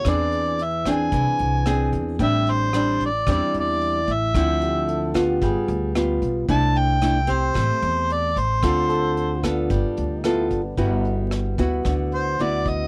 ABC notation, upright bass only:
X:1
M:4/4
L:1/16
Q:1/4=112
K:Gmix
V:1 name="Upright bass" clef=bass
E,,8 ^B,,, z B,,,4 E,,2 | A,,,8 E,, z E,,4 A,,,2 | D,,8 G,,, z D,,4 B,,,2 | C,,8 A,,, z E,,4 A,,,2 |
D,,8 G,,, z D,,4 G,,,2 | [K:G] G,,,6 D,,2 D,,4 D,,4 |]